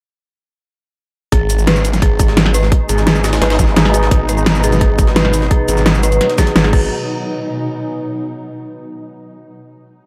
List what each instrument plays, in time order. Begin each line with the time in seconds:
1.32 detuned saw bass G#1, synth drone B2 G#3 D#4, ambient pad D#4, synth bell G#4, kick, closed hi-hat
1.50 closed hi-hat, cabasa
1.56 ambient pad B4, cabasa
1.67 synth bell B4, snare, closed hi-hat
1.76 closed hi-hat, cabasa
1.85 closed hi-hat, cabasa
1.93 snare, closed hi-hat, cabasa
2.02 synth bell G#4, kick, closed hi-hat
2.11 ambient pad G#5
2.20 detuned saw bass G#1, synth bell G#4, kick, closed hi-hat, cabasa
2.28 snare
2.37 snare, closed hi-hat
2.46 snare
2.54 synth bell B4, closed hi-hat, open hi-hat, cabasa
2.63 snare
2.72 kick, closed hi-hat
2.89 detuned saw bass G#1, synth bell G#4, closed hi-hat, cabasa
2.98 snare, cabasa
3.07 synth bell G#4, snare, closed hi-hat
3.15 cabasa
3.24 snare, closed hi-hat, cabasa
3.33 snare, closed hi-hat, cabasa
3.41 wobble bass G#1, synth bell B4, snare, closed hi-hat
3.50 snare, closed hi-hat
3.59 kick, snare, closed hi-hat, cabasa
3.68 snare
3.76 wobble bass G#1, synth bell G#4, snare, closed hi-hat
3.85 snare
3.94 synth bell G#4, closed hi-hat, cabasa
4.03 snare
4.11 detuned saw bass G#1, synth drone F#3, kick, closed hi-hat
4.29 synth bell B4, closed hi-hat, cabasa
4.38 cabasa
4.46 snare, closed hi-hat
4.55 ambient pad F#5, closed hi-hat, cabasa
4.64 synth bell G#4, closed hi-hat, cabasa
4.72 snare, closed hi-hat, cabasa
4.81 synth bell G#4, kick, closed hi-hat
4.99 detuned saw bass G#1, kick, closed hi-hat, cabasa
5.07 snare
5.16 synth bell B4, snare, closed hi-hat
5.25 snare
5.33 closed hi-hat, open hi-hat, cabasa
5.42 snare
5.51 synth bell G#4, kick, closed hi-hat
5.68 detuned saw bass G#1, synth bell G#4, closed hi-hat, cabasa
5.77 snare, cabasa
5.86 snare, closed hi-hat
5.95 cabasa
6.03 synth bell B4, closed hi-hat, cabasa
6.12 closed hi-hat, cabasa
6.21 snare, closed hi-hat
6.29 snare, closed hi-hat
6.38 synth bell G#4, kick, snare, closed hi-hat, cabasa
6.47 snare, closed hi-hat
6.56 detuned saw bass G#1, synth bell G#4, snare, closed hi-hat
6.64 snare
6.73 detuned saw bass G#1, ambient pad D#4, synth bell G#4, kick, crash
6.79 ambient pad B4
7.01 ambient pad G#5